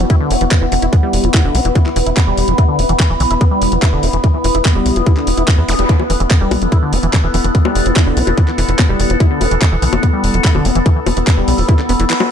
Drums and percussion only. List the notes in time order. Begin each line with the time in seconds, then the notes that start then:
0.10 kick, closed hi-hat
0.31 open hi-hat
0.41 closed hi-hat
0.51 kick, clap, closed hi-hat
0.72 open hi-hat
0.82 closed hi-hat
0.93 kick, closed hi-hat
1.13 open hi-hat
1.24 closed hi-hat
1.34 kick, clap, closed hi-hat
1.55 open hi-hat
1.65 closed hi-hat
1.75 kick, closed hi-hat
1.86 clap
1.96 open hi-hat
2.06 closed hi-hat
2.17 kick, clap, closed hi-hat
2.37 open hi-hat
2.48 closed hi-hat
2.58 kick, closed hi-hat
2.79 open hi-hat
2.89 closed hi-hat
3.00 kick, clap, closed hi-hat
3.20 open hi-hat
3.31 closed hi-hat
3.41 kick, closed hi-hat
3.62 open hi-hat
3.72 closed hi-hat
3.82 kick, clap, closed hi-hat
4.03 open hi-hat
4.13 closed hi-hat
4.24 kick, closed hi-hat
4.44 open hi-hat
4.55 closed hi-hat
4.65 kick, clap, closed hi-hat
4.86 open hi-hat
4.96 closed hi-hat
5.06 kick, closed hi-hat
5.17 clap
5.27 open hi-hat
5.37 closed hi-hat
5.48 kick, clap, closed hi-hat
5.68 open hi-hat
5.79 closed hi-hat
5.89 kick, closed hi-hat
6.00 high bongo
6.10 open hi-hat
6.20 closed hi-hat
6.31 kick, clap, closed hi-hat
6.51 open hi-hat, high bongo
6.62 closed hi-hat
6.72 kick, closed hi-hat
6.93 open hi-hat
7.03 closed hi-hat
7.13 kick, clap, closed hi-hat, high bongo
7.34 open hi-hat
7.44 closed hi-hat
7.55 kick, closed hi-hat
7.65 high bongo
7.75 open hi-hat
7.86 closed hi-hat
7.96 kick, clap, closed hi-hat
8.17 open hi-hat
8.27 closed hi-hat, high bongo
8.38 kick, closed hi-hat
8.48 clap
8.58 open hi-hat
8.69 closed hi-hat
8.79 kick, clap, closed hi-hat, high bongo
9.00 open hi-hat
9.10 closed hi-hat
9.20 kick, closed hi-hat
9.41 open hi-hat, high bongo
9.51 closed hi-hat
9.62 kick, clap, closed hi-hat
9.82 open hi-hat
9.93 closed hi-hat, high bongo
10.03 kick, closed hi-hat
10.24 open hi-hat
10.34 closed hi-hat
10.44 kick, clap, closed hi-hat
10.55 high bongo
10.65 open hi-hat
10.75 closed hi-hat
10.86 kick, closed hi-hat
11.06 open hi-hat, high bongo
11.17 closed hi-hat
11.27 kick, clap, closed hi-hat
11.48 open hi-hat
11.58 open hi-hat
11.69 kick, closed hi-hat, high bongo
11.79 clap
11.89 open hi-hat
12.00 closed hi-hat
12.10 clap, closed hi-hat
12.20 high bongo